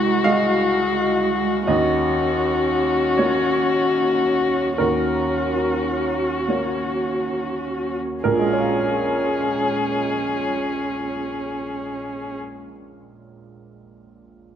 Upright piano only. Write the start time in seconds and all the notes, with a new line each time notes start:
Already playing: C2 F#5
0.24 G#3 F#4 D#5 F5
1.67 D#2 D#5
3.18 A#3 F#4 C#5
4.78 D#2 A#4
6.48 A#3 F#4 C#5
8.24 A#1 A#4
8.32 A#2
8.39 G#3
8.46 F4
8.53 C#5
8.60 F5